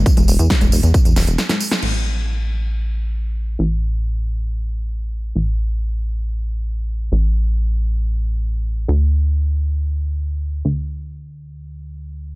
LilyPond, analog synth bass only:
\new Staff \with { instrumentName = "Analog synth bass" } { \clef bass \time 4/4 \key d \dorian \tempo 4 = 136 r16 e,,16 e,,16 e,16 r16 e,,16 e,,16 e,16 r16 e,,16 e,,16 e,,16 r4 | a,,1 | a,,1 | a,,1 |
a,,1 | d,1 | d,1 | }